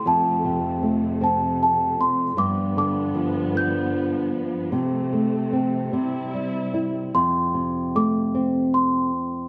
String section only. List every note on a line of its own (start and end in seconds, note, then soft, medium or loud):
0.00 2.34 A3 medium
0.05 2.36 F2 medium
0.05 2.35 C3 medium
2.38 4.70 G2 medium
2.38 5.90 F3 medium
2.38 4.71 B3 medium
4.73 7.12 C3 medium
4.73 5.93 A3 medium
5.95 7.14 G3 medium
5.95 7.14 E4 medium